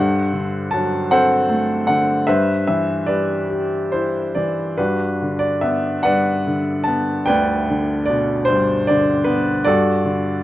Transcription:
grand piano
Already playing: G2 A4 C5 F#5
0.33 D3
0.71 F#3 A5
1.11 C4 A4 C5 F#5
1.49 A3
1.87 D3 F#5
2.27 G2 B4 C5 E5
2.67 E3 E5
3.07 G3 B4 D5
3.50 G4
3.92 E4 C5
4.34 E3 D5
4.77 G2 D4 F#4 B4
5.22 D3
5.39 D5
5.61 B3 E5
6.03 G2 B4 D5 F#5
6.47 D3
6.84 A5
6.88 B3
7.26 D2 B4 D5 G5
7.70 D3
8.06 D5
8.10 B2
8.45 C5
8.50 G2
8.87 D3 D5
9.24 B3 B4
9.65 G2 F#4 A4 D5
10.05 D3

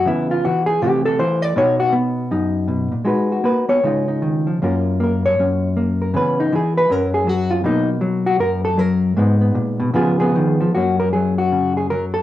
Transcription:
hollow-body jazz guitar
0.06 C#3 E3 B3 E4
0.31 F4
0.45 E3 F#4
0.66 G#4
0.82 C3 E3 A3 G4
1.05 A4
1.19 E3 C5
1.42 D5
1.56 B2 B3 D#4 F#4 C#5
1.80 F#4
1.92 B3
2.31 F#2 D#4
2.68 B2
2.92 A#2
3.05 G#3 D#4 F#4 B4
3.32 F#4
3.44 A#3 B4
3.69 B3 C#5
3.84 C#3 G#3 D#4 F4
4.08 D#4
4.22 D#3
4.47 F3
4.62 F#2 A#3 C#4 F4 A#4
5.00 A#3 A#4
5.26 C#5
5.39 F#2 C#4
5.77 A#3
6.02 A#4
6.14 C#3 E3 B3 C#4 B4
6.40 D#4
6.52 E3 G#4
6.77 B4
6.90 F#2 F#3 C#4 A#4
7.14 G#4
7.27 F#3 F#4
7.51 F4
7.64 B2 F#3 A#3 D#4
8.01 F#3
8.26 F#4
8.39 F#2 A#4
8.65 A4
8.77 F#3 A#4
9.17 G#2 G#3 B3 D#4
9.41 B3
9.55 A#2
9.80 B2
9.94 C#3 F3 B3 F4 G#4
10.20 B3 G#4
10.36 D#3
10.61 F3
10.75 F#2 F#3 A#3 C#4 F#4
11.00 A#4
11.13 F#3 G#4
11.38 F#4
11.52 C#3
11.77 G#4
11.90 F#3 A#4
12.14 A4

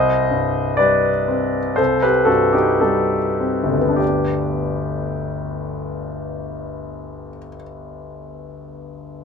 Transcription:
grand piano
Already playing: C2 C5 D#5
0.31 G2
0.77 G3 B4 D5
1.28 C4
1.76 C2 A4 C5
2.03 G4 B4
2.25 G2 F#4 A4
2.53 D#4 G4
2.81 G3 D#4 A4
3.40 C4
3.63 G1
3.71 D2
3.81 B3
3.89 D4
3.96 G4

